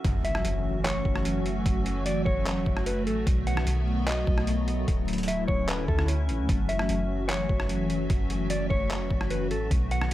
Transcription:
0.04 0.43 F#1 loud
0.04 3.23 E3 medium
0.04 3.23 F#3 medium
0.04 9.67 A3 medium
0.04 3.24 A3 medium
0.04 3.23 C#4 medium
0.04 3.23 F#4 medium
0.04 3.24 F#4 medium
0.04 3.24 E5 medium
0.04 kick loud
0.04 closed hi-hat medium
0.04 impact medium
0.25 0.81 E5 medium
0.25 closed hi-hat medium
0.35 cross-stick loud
0.45 1.03 F#1 loud
0.45 closed hi-hat medium
0.84 1.61 C#5 medium
0.84 clap loud
0.84 closed hi-hat medium
1.05 1.63 F#1 loud
1.05 kick loud
1.15 cross-stick medium
1.25 closed hi-hat medium
1.46 closed hi-hat medium
1.66 2.24 F#1 loud
1.66 kick loud
1.66 closed hi-hat medium
1.86 closed hi-hat medium
2.06 2.25 D5 medium
2.06 closed hi-hat medium
2.25 2.58 F#1 loud
2.25 2.83 C#5 medium
2.25 kick medium
2.46 clap loud
2.46 closed hi-hat medium
2.56 2.66 E1 loud
2.66 3.08 F#1 loud
2.66 kick loud
2.77 cross-stick medium
2.86 3.06 B4 medium
2.86 closed hi-hat medium
3.07 3.26 A1 loud
3.07 3.26 A4 medium
3.07 closed hi-hat medium
3.27 3.65 B1 loud
3.27 4.86 D#3 medium
3.27 6.46 F#3 medium
3.27 4.86 B3 medium
3.27 4.86 F#4 medium
3.27 4.86 A4 medium
3.27 4.86 D#5 medium
3.27 kick loud
3.27 closed hi-hat medium
3.47 4.04 F#5 medium
3.47 closed hi-hat medium
3.57 cross-stick loud
3.67 4.25 B1 loud
3.67 closed hi-hat medium
4.07 4.84 D#5 medium
4.07 clap loud
4.07 closed hi-hat medium
4.27 4.85 B1 loud
4.27 kick loud
4.38 cross-stick medium
4.47 closed hi-hat medium
4.68 closed hi-hat medium
4.88 5.46 D1 loud
4.88 6.47 D3 medium
4.88 9.67 C#4 medium
4.88 6.47 C#4 medium
4.88 6.47 E4 medium
4.88 9.67 F#4 medium
4.88 6.47 E5 medium
4.88 kick loud
4.88 closed hi-hat medium
5.08 closed hi-hat medium
5.13 closed hi-hat medium
5.18 closed hi-hat medium
5.23 closed hi-hat medium
5.28 5.47 E5 medium
5.28 closed hi-hat medium
5.48 5.87 D1 loud
5.48 5.67 C#5 medium
5.48 kick medium
5.68 5.87 B4 medium
5.68 clap loud
5.68 closed hi-hat medium
5.88 6.30 D2 loud
5.88 6.07 A4 medium
5.88 kick loud
5.99 cross-stick medium
6.08 closed hi-hat medium
6.29 6.40 A1 loud
6.29 closed hi-hat medium
6.39 6.48 D2 loud
6.49 6.88 F#1 loud
6.49 9.68 E3 medium
6.49 9.68 F#3 medium
6.49 9.68 A3 medium
6.49 10.14 F#4 medium
6.49 9.68 E5 loud
6.49 kick loud
6.49 closed hi-hat medium
6.69 7.26 E5 medium
6.69 closed hi-hat medium
6.79 cross-stick loud
6.89 7.47 F#1 loud
6.89 closed hi-hat medium
7.28 8.05 C#5 medium
7.28 clap loud
7.28 closed hi-hat medium
7.49 8.07 F#1 loud
7.49 kick loud
7.60 cross-stick medium
7.69 closed hi-hat medium
7.90 closed hi-hat medium
8.10 8.68 F#1 loud
8.10 kick loud
8.10 closed hi-hat medium
8.30 closed hi-hat medium
8.50 8.69 D5 medium
8.50 closed hi-hat medium
8.70 9.02 F#1 loud
8.70 9.27 C#5 medium
8.70 kick medium
8.90 clap loud
8.90 closed hi-hat medium
9.01 9.10 E1 loud
9.11 9.52 F#1 loud
9.11 kick loud
9.21 cross-stick medium
9.30 9.50 B4 medium
9.30 closed hi-hat medium
9.51 9.70 A1 loud
9.51 9.70 A4 medium
9.51 closed hi-hat medium
9.71 10.10 B1 loud
9.71 10.14 D#3 medium
9.71 10.14 F#3 medium
9.71 10.14 A3 medium
9.71 10.14 B3 medium
9.71 10.14 A4 medium
9.71 10.14 D#5 medium
9.71 kick loud
9.71 closed hi-hat medium
9.91 10.14 F#5 medium
9.91 closed hi-hat medium
10.01 cross-stick loud

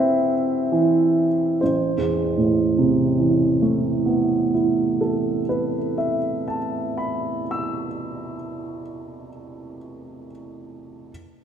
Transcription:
0.00 1.55 A1 soft
0.00 1.26 C4 soft
0.00 0.33 E4 soft
0.00 1.62 B4 soft
0.00 1.63 E5 soft
0.72 1.60 E3 soft
1.61 5.42 A1 soft
1.61 5.40 C5 soft
1.98 5.77 E2 soft
2.38 6.17 A2 soft
2.78 6.58 C3 soft
3.19 6.98 E3 soft
3.62 7.41 A3 soft
4.06 7.85 B3 soft
4.54 8.34 E4 soft
5.01 8.80 A4 soft
5.49 9.28 B4 soft
5.98 9.77 E5 soft
6.48 10.27 A5 soft
6.97 10.31 B5 soft
7.51 10.31 E6 soft

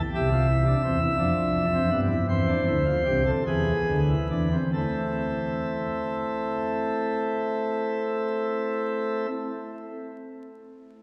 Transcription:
0.14 0.75 C2 medium
0.14 0.74 C3 medium
0.14 0.29 G4 medium
0.14 2.00 E5 medium
0.31 0.46 F4 medium
0.48 0.64 E4 medium
0.66 0.81 D4 medium
0.83 1.06 E2 medium
0.83 1.06 E3 medium
0.83 0.99 C4 medium
1.00 1.16 E4 medium
1.18 1.81 F2 medium
1.18 1.81 F3 medium
1.18 1.65 D4 medium
1.73 1.89 C4 medium
1.91 2.14 G2 medium
1.91 2.14 G3 medium
1.91 2.07 B3 medium
2.10 2.26 E4 medium
2.28 2.53 E2 medium
2.28 2.52 E3 medium
2.28 2.45 C4 medium
2.28 3.30 C5 medium
2.48 2.64 D4 medium
2.67 2.91 D2 medium
2.67 2.91 D3 medium
2.67 2.84 E4 medium
2.86 3.03 F4 medium
3.05 3.31 C2 medium
3.05 3.31 C3 medium
3.05 3.23 G4 medium
3.26 3.43 A4 medium
3.47 3.72 E2 medium
3.47 3.72 E3 medium
3.47 4.00 G#4 medium
3.47 4.55 B4 medium
3.88 4.14 D2 medium
3.88 4.14 D3 medium
4.09 4.27 E4 medium
4.30 4.57 E2 medium
4.30 4.57 E3 medium
4.30 4.48 D4 medium
4.51 4.70 C4 medium
4.74 9.26 A3 medium
4.74 9.26 C4 medium
4.74 9.29 E4 soft
4.74 9.26 A4 medium

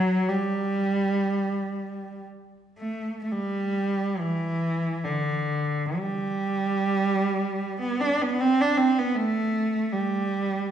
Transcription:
0.00 0.26 F#3 medium
0.28 2.24 G3 medium
2.78 3.21 A3 medium
3.23 3.31 A3 soft
3.32 4.19 G3 medium
4.20 5.06 E3 medium
5.05 6.00 D3 medium
5.99 7.81 G3 medium
7.81 8.01 B3 medium
8.01 8.21 D4 medium
8.22 8.41 B3 medium
8.40 8.59 C4 medium
8.61 8.79 D4 medium
8.78 8.96 C4 medium
8.99 9.16 B3 medium
9.15 9.91 A3 medium
9.93 10.71 G3 medium

